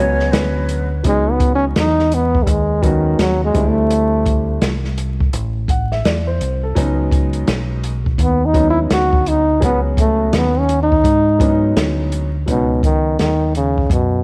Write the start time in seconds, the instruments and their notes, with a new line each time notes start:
Already playing: fingered electric bass C#2, grand piano F#3 G#3 B3, flute C#5
0.00 grand piano C#4 F#4
0.20 snare
0.32 fingered electric bass D2, flute B4, snare, closed hi-hat
0.69 closed hi-hat
1.03 fingered electric bass C#2, grand piano F#3 G#3 B3 C#4 D#4, kick, closed hi-hat
1.08 trombone G#3
1.31 trombone B3
1.40 kick, closed hi-hat
1.55 trombone C#4
1.76 fingered electric bass E2, trombone D#4, snare, closed hi-hat
1.99 snare
2.12 trombone B3, closed hi-hat
2.35 kick
2.43 fingered electric bass D#2, trombone G3, kick, closed hi-hat
2.49 trombone G#3
2.82 trombone D#3, grand piano F#3 G#3 B3 C#4 F#4, kick, closed hi-hat
3.19 fingered electric bass D#2, trombone F#3, snare, closed hi-hat
3.45 trombone G#3
3.53 fingered electric bass D2, grand piano G3 A3 C4 D4 E4, kick, closed hi-hat
3.69 trombone A3
3.90 closed hi-hat
4.26 kick, closed hi-hat
4.62 fingered electric bass C2, snare, closed hi-hat
4.85 snare
4.98 closed hi-hat
5.20 kick
5.33 fingered electric bass A1, closed hi-hat
5.68 grand piano F#5, kick, closed hi-hat
5.92 grand piano E5, snare
6.05 fingered electric bass E2, grand piano D5, snare, closed hi-hat
6.27 grand piano C5
6.41 fingered electric bass C2, closed hi-hat
6.63 grand piano A4
6.75 fingered electric bass C#2, grand piano F#3 G#3 B3 C#4 D#4, kick, closed hi-hat
7.11 kick, closed hi-hat
7.33 closed hi-hat
7.47 fingered electric bass B1, snare, closed hi-hat
7.83 closed hi-hat
8.06 kick
8.18 fingered electric bass D#2, kick, closed hi-hat
8.23 trombone B3
8.46 trombone D#4
8.53 grand piano F#3 G#3 B3 C#4 D#4, kick, closed hi-hat
8.70 trombone E4
8.90 fingered electric bass D2, trombone F#4, snare, closed hi-hat
9.13 kick
9.26 trombone D#4, closed hi-hat
9.60 fingered electric bass C#2, grand piano F#3 B3 C#4 F#4 G#4, kick, closed hi-hat
9.65 trombone B3
9.97 trombone A3, kick, closed hi-hat
10.33 fingered electric bass D#2, trombone B3, snare, closed hi-hat
10.60 trombone C#4
10.69 closed hi-hat
10.83 trombone D#4
10.92 kick
11.04 fingered electric bass G#2, kick, closed hi-hat
11.39 grand piano F#3 G#3 B3 C#4 D4, kick, closed hi-hat
11.49 grand piano D#4
11.76 fingered electric bass D2, snare, closed hi-hat
12.12 closed hi-hat
12.46 fingered electric bass C#2, grand piano F#3 G#3 B3 C#4 D#4, kick, closed hi-hat
12.51 trombone B2
12.83 trombone D#3, kick, closed hi-hat
13.19 fingered electric bass D#2, trombone D#3, snare, closed hi-hat
13.55 trombone C#3, closed hi-hat
13.78 kick
13.90 fingered electric bass F#2, trombone B2, kick, closed hi-hat